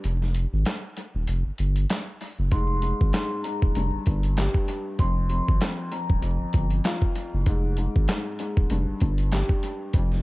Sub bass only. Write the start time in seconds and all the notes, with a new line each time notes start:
0.04 F1
0.53 G#1
1.15 D#1
1.28 F1
1.46 G1
1.59 G1
2.39 F#1
2.52 F1
3.01 G#1
3.62 D#1
3.76 F1
3.93 G1
4.07 G1
4.99 F1
5.49 G#1
6.10 D#1
6.23 F1
6.41 G1
6.54 G1
7.34 F#1
7.47 F1
7.96 G#1
8.57 D#1
8.71 F1
8.88 G1
9.02 G1
9.94 F1